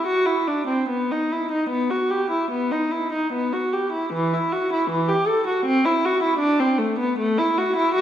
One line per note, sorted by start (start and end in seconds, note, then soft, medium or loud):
0.06 0.26 F#4 medium
0.26 0.46 E4 medium
0.48 0.68 D4 medium
0.67 0.88 C4 soft
0.89 1.09 B3 medium
1.12 1.31 D#4 soft
1.32 1.51 E4 soft
1.52 1.70 D#4 soft
1.69 1.89 B3 medium
1.90 2.10 F#4 soft
2.11 2.30 G4 soft
2.30 2.50 E4 soft
2.51 2.71 B3 soft
2.71 2.91 D#4 soft
2.92 3.12 E4 soft
3.12 3.32 D#4 soft
3.33 3.52 B3 soft
3.53 3.73 F#4 soft
3.73 3.93 G4 soft
3.92 4.12 E4 soft
4.13 4.32 E3 medium
4.34 4.52 E4 medium
4.53 4.71 F#4 medium
4.73 4.90 E4 medium
4.90 5.08 E3 medium
5.09 5.27 G4 medium
5.28 5.46 A4 medium
5.47 5.65 F#4 soft
5.66 5.84 C4 medium
5.85 6.03 E4 medium
6.05 6.22 F#4 medium
6.23 6.40 E4 medium
6.39 6.58 D4 medium
6.60 6.79 C4 medium
6.79 6.98 A3 medium
6.99 7.18 B3 medium
7.19 7.38 A3 medium
7.38 7.57 E4 medium
7.58 7.77 F#4 medium
7.76 7.95 E4 medium
7.94 8.01 F#4 medium